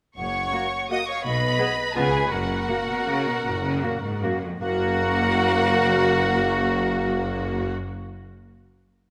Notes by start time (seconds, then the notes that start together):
0.17 F#1 F#2 C#5 F#5 C#6
0.53 A#3 F#4
0.90 A#3 F#4 D#5 F#5 D#6
1.07 C#5 F5 C#6
1.24 B1 B2 B4 D#5 B5
1.58 B3 G#4
1.95 C#2 C#3 B3 F4 G#4 B4 G#5
2.31 F#1 F#2 F#4 A#4 F#5
2.67 A#2 A#3 F#4
2.88 B2
3.07 C#3 A#3 F#4
3.26 B2
3.44 F#1 A#2
3.63 C#3
3.82 A#2 A#3 F#4
4.03 G#2
4.23 F#2 A#3 F#4
4.43 F2
4.61 F#1 F#2 A#3 F#4 A#4 F#5